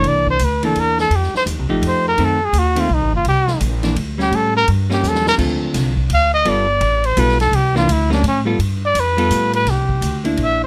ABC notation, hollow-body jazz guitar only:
X:1
M:3/4
L:1/8
Q:"Swing" 1/4=168
K:Cmix
V:1 name="Hollow-body jazz guitar"
[E,B,D]2 z [E,B,D]3 | z3 [F,A,_EG]3 | [^D,A,C] z2 [D,A,C] z2 | z3 [E,B,D] z [G,_D]- |
[G,_D]2 z [G,B,^C]3 | [D,CFA]3 z3 | [G,=B,FA] z3 [G,B,FA] z | z [E,B,D] z [G,B,_D] z [G,=B,FA] |
z3 [G,=B,FA]3 | z3 [B,DE]3 |]